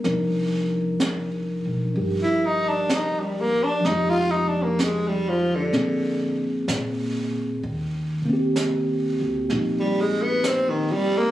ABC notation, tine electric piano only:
X:1
M:4/4
L:1/8
Q:"Swing" 1/4=64
K:Cm
V:1 name="Tine electric piano"
[F,DEB]4 [DG]4 | [F,A,EG]4 [D,B,CA]4 | z [C,B,CG]3 [B,E]4 |]